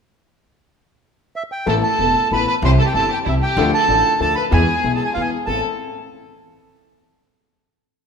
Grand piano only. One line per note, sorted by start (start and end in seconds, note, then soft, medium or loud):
1.66 1.80 A1 medium
1.66 1.80 A2 medium
1.66 1.80 E3 medium
1.66 1.80 A3 medium
1.66 1.80 B3 medium
1.66 1.80 A4 medium
1.99 2.13 E1 medium
1.99 2.13 E2 medium
1.99 2.13 E3 soft
1.99 2.13 A3 soft
1.99 2.13 B3 soft
1.99 2.13 A4 medium
2.32 2.45 A1 medium
2.32 2.45 A2 medium
2.32 2.45 E3 medium
2.32 2.45 A3 soft
2.32 2.45 B3 soft
2.32 2.45 A4 medium
2.63 2.76 C2 medium
2.63 2.76 C3 medium
2.63 2.76 E3 medium
2.63 2.76 G3 medium
2.63 2.76 C4 medium
2.63 2.76 G4 medium
2.94 3.08 G1 medium
2.94 3.08 G2 medium
2.94 3.07 E3 medium
2.94 3.07 G3 soft
2.94 3.08 C4 soft
2.94 3.08 G4 medium
3.26 3.39 C2 medium
3.26 3.39 C3 medium
3.26 3.39 E3 medium
3.26 3.39 G3 soft
3.26 3.39 C4 soft
3.26 3.39 G4 medium
3.57 3.70 D2 medium
3.57 3.70 D3 medium
3.57 3.70 F3 medium
3.57 3.70 A3 medium
3.57 3.70 D4 medium
3.57 3.71 A4 medium
3.89 4.02 A1 medium
3.89 4.02 A2 medium
3.89 4.02 F3 medium
3.89 4.02 A3 medium
3.89 4.02 D4 soft
3.89 4.02 A4 medium
4.20 4.33 D2 medium
4.20 4.33 D3 medium
4.20 4.33 F3 medium
4.20 4.33 A3 soft
4.20 4.33 D4 soft
4.20 4.33 A4 medium
4.51 4.64 E2 medium
4.51 4.65 E3 medium
4.51 4.64 G#3 medium
4.51 4.64 B3 medium
4.51 4.64 G#4 medium
4.83 4.96 B1 medium
4.83 4.96 B2 medium
4.83 4.96 E3 soft
4.83 4.96 G#3 soft
4.83 4.96 B3 soft
4.83 4.97 G#4 medium
5.15 5.29 E2 medium
5.15 5.28 E3 medium
5.15 5.29 G#3 soft
5.15 5.29 B3 soft
5.15 5.29 G#4 medium
5.47 5.60 A1 soft
5.47 5.60 C4 soft
5.47 5.60 E4 soft
5.47 5.60 A4 medium